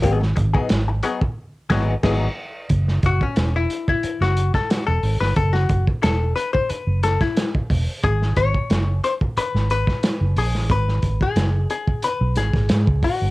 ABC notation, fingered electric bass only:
X:1
M:4/4
L:1/16
Q:1/4=90
K:E
V:1 name="Fingered electric bass" clef=bass
G,,,2 G,,, z G,,,2 z4 G,,,2 G,,,2 z2 | F,,,2 F,,, z E,,,2 z3 F,,,2 z2 E,,, G,,, =G,,, | F,,,2 F,,, z E,,,2 z3 F,,,2 z3 E,,, z | G,,,2 G,,, z F,,,2 z3 G,,,2 z2 F,,, ^A,,, =A,,, |
G,,,2 G,,, z F,,,2 z3 B,,, G,,, G,,, G,, C,, z =G,,, |]